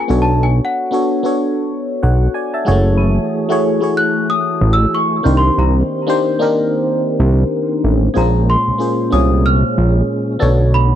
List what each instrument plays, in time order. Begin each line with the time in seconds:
0.00 celesta G#5
0.08 analog synth bass B1, fm electric piano B3 D4 F#4 A4 C#5
0.22 celesta A5
0.43 celesta G#5
0.65 celesta F#5
0.91 fm electric piano B3 D4 F#4 A4 C#5
1.23 fm electric piano B3 D4 F#4 A4 C#5
2.03 analog synth bass B1, fm electric piano C#5 F#5
2.34 fm electric piano D5 G#5
2.54 fm electric piano E5 A5
2.65 analog synth bass F#1, fm electric piano G#3 E4 F#4 G#4 C#5
2.71 fm electric piano A3
2.97 tonewheel organ E3 A3 G#4
3.49 fm electric piano A3 E4 F#4 G#4 C#5
3.80 fm electric piano A3 E4 F#4 G#4 C#5
3.97 celesta F#6
4.30 celesta D#6
4.61 analog synth bass A1
4.73 celesta E6
4.95 celesta C#6
5.23 analog synth bass C2, tonewheel organ D#3 A#3 C4, fm electric piano A#3 D4 D#4 G4 C5
5.37 celesta C6
5.58 analog synth bass C2, celesta A#5
6.07 fm electric piano A#3 D4 D#4 G4 C5
6.39 fm electric piano A#3 D4 D#4 G4 A#4
7.20 analog synth bass C2
7.84 analog synth bass A1
8.14 analog synth bass A#1, tonewheel organ A#2 G#3 C#4, fm electric piano A#3 C4 F4 G#4 C5, celesta A#5
8.21 fm electric piano C#4
8.50 celesta C6
8.68 analog synth bass C2
8.78 fm electric piano A#3 C#4 F4 G#4 C5
9.10 analog synth bass C2, fm electric piano A#3 C#4 F4 G#4 C#5, celesta D#6
9.46 celesta F6
9.78 analog synth bass A#1
10.39 analog synth bass B1, tonewheel organ D3 A3 D4, fm electric piano B3 D4 F#4 A4 C#5
10.74 celesta B5